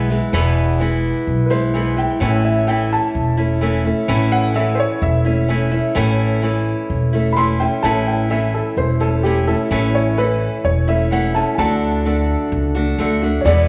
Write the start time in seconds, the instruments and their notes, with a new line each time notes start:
Already playing: upright bass B1, steel-string acoustic guitar G#3
0.10 steel-string acoustic guitar E3 G#3 B3 E4
0.33 upright bass E1, steel-string acoustic guitar E2 B2 E3 G#3 B3 E4
0.80 steel-string acoustic guitar E3 G#3 B3 E4
1.27 upright bass B1
1.46 steel-string acoustic guitar E4, upright piano B4
1.51 steel-string acoustic guitar E3 G#3 B3, upright piano C5
1.74 steel-string acoustic guitar E3 G#3 B3 E4
1.96 steel-string acoustic guitar E3 G#3 B3 E4, upright piano G5
2.20 upright bass A1, steel-string acoustic guitar A2 E3 A3 C#4 E4
2.45 upright piano E5
2.67 steel-string acoustic guitar E3 A3 C#4 E4, upright piano G5
2.93 upright piano A5
3.15 upright bass E1
3.37 steel-string acoustic guitar A3 C#4 E4
3.61 steel-string acoustic guitar E3 A3 C#4 E4
3.85 steel-string acoustic guitar A3 C#4 E4
4.08 upright bass A1, steel-string acoustic guitar A2 E3 A3 C#4 E4
4.32 upright piano F#5
4.54 steel-string acoustic guitar E3 A3 C#4 E4, upright piano E5
4.75 upright piano C5
4.80 upright piano C#5
5.02 upright bass E1, upright piano E5
5.25 steel-string acoustic guitar A3 C#4 E4
5.48 steel-string acoustic guitar E3 A3 C#4 E4
5.71 steel-string acoustic guitar A3 C#4 E4
5.95 upright bass A1, steel-string acoustic guitar A2 E3 A3 C#4 E4
6.42 steel-string acoustic guitar E3 A3 C#4 E4
6.90 upright bass E1
7.13 steel-string acoustic guitar A3 C#4 E4
7.32 steel-string acoustic guitar E3, upright piano B5
7.37 steel-string acoustic guitar A3 C#4 E4, upright piano C6
7.60 steel-string acoustic guitar A3 C#4 E4, upright piano G5
7.83 upright bass A1, steel-string acoustic guitar A2 E3 A3 C#4 E4, upright piano A5
8.07 upright piano G5
8.30 steel-string acoustic guitar E3 A3 C#4 E4, upright piano E5
8.54 upright piano A4
8.77 upright bass E1, upright piano C5
9.00 steel-string acoustic guitar A3 C#4 E4, upright piano A4
9.23 steel-string acoustic guitar E3 A3 C#4 E4, upright piano G4
9.47 steel-string acoustic guitar A3 C#4 E4, upright piano A4
9.71 upright bass A1, steel-string acoustic guitar A2 E3 A3 C#4 E4
9.95 upright piano C#5
10.17 steel-string acoustic guitar E3 A3 C#4 E4, upright piano B4
10.64 upright bass E1, upright piano C#5
10.87 steel-string acoustic guitar A3 C#4 E4, upright piano E5
11.11 steel-string acoustic guitar E3 A3 C#4 E4, upright piano F#5
11.34 steel-string acoustic guitar A3 C#4 E4, upright piano A5
11.55 upright bass D2, steel-string acoustic guitar D3, upright piano G#5
11.59 steel-string acoustic guitar A3 D4 F#4, upright piano A5
12.05 steel-string acoustic guitar D3 A3 D4 F#4
12.52 upright bass C#2
12.75 steel-string acoustic guitar A3 D4 F#4
12.98 upright bass D2, steel-string acoustic guitar D3 A3 D4 F#4
13.22 steel-string acoustic guitar A3 D4 F#4
13.41 upright bass E2, upright piano C#5
13.45 steel-string acoustic guitar E2 B2 E3 G#3 B3 E4, upright piano D5